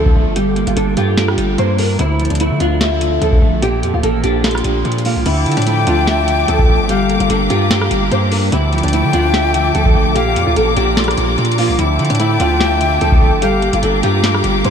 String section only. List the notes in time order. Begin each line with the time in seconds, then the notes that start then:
5.26 F3 E5 A5 D6
6.89 G4 F5 A#5
8.52 F3 E5 A5 D6
10.15 D5 A#5
11.79 E5 A5
13.42 G4 F5 A#5 D6